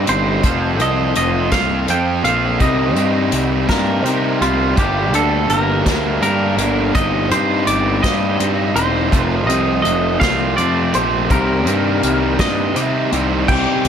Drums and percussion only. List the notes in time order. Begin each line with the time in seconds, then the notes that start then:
0.07 closed hi-hat
0.43 kick, closed hi-hat
0.80 closed hi-hat
1.15 closed hi-hat
1.52 kick, snare, closed hi-hat
1.88 closed hi-hat
2.25 closed hi-hat
2.60 kick, closed hi-hat
2.96 closed hi-hat
3.32 closed hi-hat
3.69 kick, snare, closed hi-hat
4.05 closed hi-hat
4.42 closed hi-hat
4.77 kick, closed hi-hat
5.14 closed hi-hat
5.49 closed hi-hat
5.86 kick, snare, closed hi-hat
6.22 closed hi-hat
6.58 closed hi-hat
6.95 kick, closed hi-hat
7.31 closed hi-hat
7.67 closed hi-hat
8.03 kick, snare, closed hi-hat
8.40 closed hi-hat
8.76 closed hi-hat
9.12 kick, closed hi-hat
9.49 closed hi-hat
9.85 closed hi-hat
10.21 kick, snare, closed hi-hat
10.58 closed hi-hat
10.94 closed hi-hat
11.30 kick, closed hi-hat
11.67 closed hi-hat
12.03 closed hi-hat
12.39 kick, snare, closed hi-hat
12.76 closed hi-hat
13.12 closed hi-hat
13.48 kick, crash
13.85 closed hi-hat